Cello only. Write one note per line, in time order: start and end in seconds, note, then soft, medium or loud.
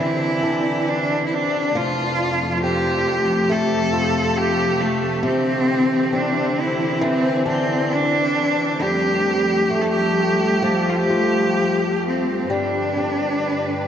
0.00 0.90 E4 medium
0.89 1.25 D4 medium
1.25 1.35 E4 medium
1.34 1.78 D4 medium
1.76 2.62 F4 medium
2.63 3.52 G4 loud
3.51 4.39 A4 loud
4.38 4.82 G4 loud
4.81 5.24 A3 medium
5.25 6.16 C4 loud
6.15 6.61 D4 medium
6.60 7.05 E4 medium
7.03 7.47 C4 loud
7.47 7.94 C4 loud
7.92 8.84 D4 loud
8.82 9.83 G4 loud
9.82 9.89 A4 medium
9.88 10.91 G4 loud
10.89 10.97 F4 medium
10.95 12.05 G4 loud
12.07 12.53 C4 medium
12.52 13.88 D4 medium